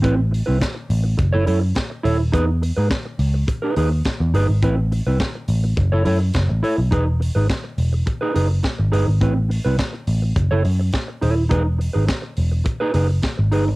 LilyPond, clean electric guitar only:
\new Staff \with { instrumentName = "Clean electric guitar" } { \time 4/4 \key e \major \tempo 4 = 105 <c' e' b'>16 r8 <c' e' b'>16 r4 r16 <e' a' cis''>16 <e' a' cis''>16 r8. <e' a' cis''>16 r16 | <dis' gis' b'>16 r8 <dis' gis' b'>16 r4 r16 <dis' gis' b'>16 <dis' gis' b'>16 r8. <dis' gis' b'>16 r16 | <c' e' b'>16 r8 <c' e' b'>16 r4 r16 <e' a' cis''>16 <e' a' cis''>16 r8. <e' a' cis''>16 r16 | <dis' gis' b'>16 r8 <dis' gis' b'>16 r4 r16 <dis' gis' b'>16 <dis' gis' b'>16 r8. <dis' gis' b'>16 r16 |
<c' e' b'>16 r8 <c' e' b'>16 r4 r16 <e' a' cis''>16 r4 <e' a' cis''>16 r16 | <dis' gis' b'>16 r8 <dis' gis' b'>16 r4 r16 <dis' gis' b'>16 <dis' gis' b'>16 r8. <dis' gis' b'>16 r16 | }